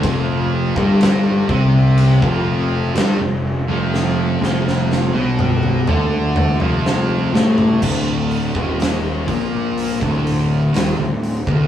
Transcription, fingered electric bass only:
\new Staff \with { instrumentName = "Fingered electric bass" } { \clef bass \time 4/4 \key f \lydian \tempo 4 = 62 f,,8. g,,8. c,8. f,,8. g,,16 f,,8 f,,16~ | f,,8 f,,8. b,,8. d,8. f,,8. a,,8 | d,,8. ees,,8. bes,,8. d,,8. ees,,16 d,,8 d,,16 | }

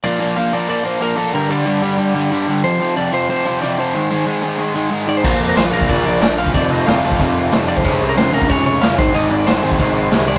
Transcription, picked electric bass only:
\new Staff \with { instrumentName = "Picked electric bass" } { \clef bass \time 4/4 \key bes \major \tempo 4 = 185 r1 | r1 | r1 | r1 |
bes,,8 f,8 bes,,8 bes,,8 bes,,8 bes,,8 bes,,4 | f,,8 f,,8 f,,8 f,,8 f,,4 f,,4 | f,,8 c,8 f,,8 f,,8 f,,8 f,,8 f,,8 aes,,8 | aes,,8 aes,,8 aes,,8 aes,,8 aes,,4 c,4 | }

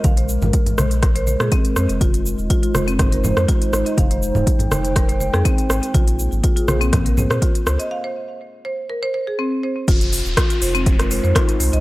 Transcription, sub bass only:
\new Staff \with { instrumentName = "Sub bass" } { \clef bass \time 4/4 \key f \minor \tempo 4 = 122 bes,,8. aes,,16 r8 bes,,4~ bes,,16 bes,16 r8 f,16 f,,16 | f,,8. ees,,16 r8 f,,4~ f,,16 f,16 r8 aes,,16 r16 | f,,8. ees,,16 r8 f,,4~ f,,16 f,16 r8 aes,,16 r16 | bes,,8. aes,,16 r8 bes,,4~ bes,,16 bes,16 r8 des,16 r16 |
r1 | f,,8. ees,,16 r8 f,,4~ f,,16 f,16 r8 c,16 c,16 | }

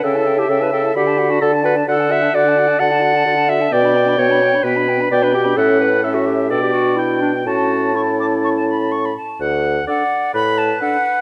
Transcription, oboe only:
\new Staff \with { instrumentName = "Oboe" } { \time 4/4 \key d \major \tempo 4 = 129 e''2 b''4 a''4 | fis''4 fis''4 a''4. r8 | g''2 b''4 g''4 | fis''4 e''4 d''4 g''4 |
a''2.~ a''8 r8 | fis''4 d''4 b'2 | }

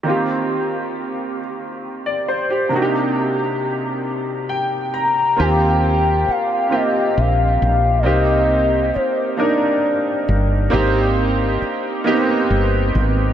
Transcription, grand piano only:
\new Staff \with { instrumentName = "Grand piano" } { \time 6/8 \key ees \major \tempo 4. = 45 << { r2 r16 d''16 c''16 g'16~ | g'16 r4. r16 g''8 bes''8 | r2. | r2. |
r2. | } \\ { <ees bes c' f' g'>2. | <c bes d' ees' ges' g'>2. | <bes c' f' g'>4 r8 <bes c' f' g'>4 r8 | <bes c' ees' g'>4 r8 <bes d' ees' bes'>4 r8 |
<bes c' ees' g'>4 r8 <bes ces' c' ees' g'>4 r8 | } >> }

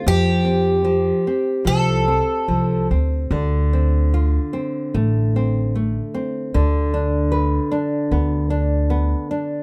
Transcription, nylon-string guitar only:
\new Staff \with { instrumentName = "Nylon-string guitar" } { \time 4/4 \key f \major \tempo 4 = 75 f8 c'8 f8 c'8 f8 c'8 f8 c'8 | d8 c'8 f'8 c'8 a8 c'8 a8 c'8 | d8 d'8 b'8 d'8 b8 d'8 b8 d'8 | }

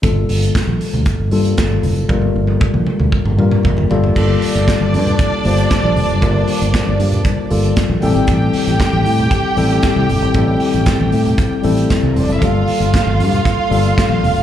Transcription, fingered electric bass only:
\new Staff \with { instrumentName = "Fingered electric bass" } { \clef bass \time 4/4 \key g \dorian \tempo 4 = 116 g,,8 g,,8 r16 bes,,16 r16 d,16 r16 g,,16 g,8 g,,8 fis,,8 | g,,8 g,,8 r16 bes,,16 r16 d,16 r16 g,,16 g,8 g,,8 g,,8 | g,,8 r16 g,,16 r16 g,,16 g,8 r8 g,,8 r16 bes,,16 f,,16 fis,,16 | g,,8 r16 g,,16 r16 g,,16 g,8 r8 g,,8 r16 bes,,16 a,,16 aes,,16 |
a,,8 r16 a,,16 r16 a,,16 a,8 r8 a,,8 r16 c,16 g,,16 aes,,16 | a,,8 r16 a,,16 r16 a,,16 a,8 r8 a,,8 r16 c,16 f,,16 fis,,16 | g,,8 r16 g,,16 r16 g,,16 g,8 r8 g,,8 r16 bes,,16 f,,16 fis,,16 | }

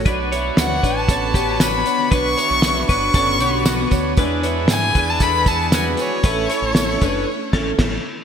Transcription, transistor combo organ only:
\new Staff \with { instrumentName = "Transistor combo organ" } { \time 4/4 \key b \minor \tempo 4 = 116 <d' fis' b' cis''>1~ | <d' fis' b' cis''>1 | <d' e' gis' b'>1 | <cis' e' a' cis''>2 r2 | }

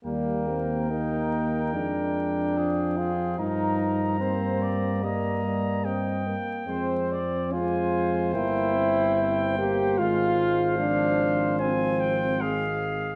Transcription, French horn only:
\new Staff \with { instrumentName = "French horn" } { \time 4/4 \key ees \major \tempo 4 = 73 bes4 ees'4 d'4. f'8 | ees'4 c'4 bes4. r8 | c'4 f'4 e'4. g'8 | f'4 d'4 c'4. r8 | }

